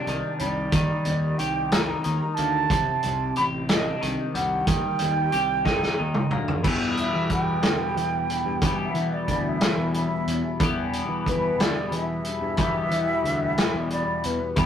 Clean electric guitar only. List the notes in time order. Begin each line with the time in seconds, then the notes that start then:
Already playing: C3 D4 G4
0.08 D#3
0.41 G3
0.74 D#3
1.40 G4
1.72 D#4
2.04 D#3
2.38 A#3
2.72 C3
3.37 G4
3.70 D4
4.01 D#3
4.35 G3
4.67 D#3
5.33 G4
5.65 D#4
5.99 D#3
6.32 A#3
6.63 E2 B2 E3 G3 B3 G4
8.63 E2 B2 E3 G3 B3 G4
10.60 E2 B2 E3 G3 B3 G4
12.58 E2 B2 E3 G3 B3 G4
14.56 E2 B2 E3 G3 B3 G4